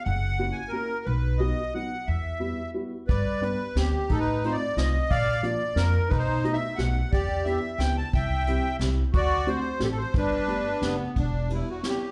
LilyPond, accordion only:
\new Staff \with { instrumentName = "Accordion" } { \time 3/4 \key e \minor \tempo 4 = 179 << { fis''4. gis''8 ais'4 | b'4 dis''4 fis''4 | e''2 r4 | \key g \major d''4 b'4 g'4 |
a'16 b'8. c''16 d''8. ees''4 | f''4 d''4 bes'4 | b'16 c''8. dis''16 e''8. fis''4 | d''4 e''4 g''8 a''8 |
g''2 r4 | d''4 c''4 a'32 g'32 a'16 c''8 | b'2 b4 | \key e \minor d'4 e'8 fis'8 g'4 | } \\ { r2. | r2. | r2. | b'4. r4. |
ees'4. r4. | d''4. r4. | dis'4. r4. | g'4. r4. |
e''2 r4 | fis'4. r4. | d'2~ d'8 r8 | r2. | } >> }